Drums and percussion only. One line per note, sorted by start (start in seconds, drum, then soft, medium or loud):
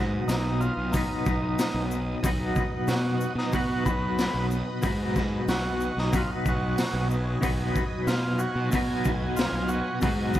0.29 snare loud
0.29 open hi-hat soft
0.29 shaker medium
0.61 shaker medium
0.93 kick medium
0.93 open hi-hat medium
0.93 shaker loud
1.26 kick medium
1.26 shaker medium
1.59 snare loud
1.59 open hi-hat medium
1.59 shaker medium
1.91 shaker medium
2.23 kick loud
2.23 open hi-hat soft
2.23 shaker loud
2.55 kick medium
2.55 shaker medium
2.88 snare loud
2.88 open hi-hat soft
2.88 shaker medium
3.21 shaker medium
3.38 snare soft
3.52 kick medium
3.52 open hi-hat soft
3.52 shaker medium
3.86 kick medium
3.86 shaker medium
4.18 snare loud
4.18 open hi-hat soft
4.18 shaker medium
4.51 shaker medium
4.82 kick loud
4.82 open hi-hat soft
4.82 shaker medium
5.16 kick medium
5.16 snare soft
5.16 shaker medium
5.48 snare loud
5.48 open hi-hat soft
5.48 shaker medium
5.80 shaker medium
5.98 snare soft
6.13 kick medium
6.13 open hi-hat soft
6.13 shaker medium
6.46 kick medium
6.46 shaker medium
6.78 snare loud
6.78 open hi-hat medium
6.78 shaker medium
7.11 shaker medium
7.43 kick loud
7.43 open hi-hat medium
7.43 shaker medium
7.76 kick medium
7.76 shaker medium
8.07 snare loud
8.07 open hi-hat soft
8.07 shaker medium
8.39 shaker medium
8.72 kick medium
8.72 open hi-hat soft
8.72 shaker loud
9.04 kick medium
9.04 shaker medium
9.37 snare loud
9.37 open hi-hat medium
9.37 shaker medium
9.69 shaker medium
10.01 kick loud
10.01 open hi-hat medium
10.01 shaker loud
10.34 kick medium
10.34 shaker medium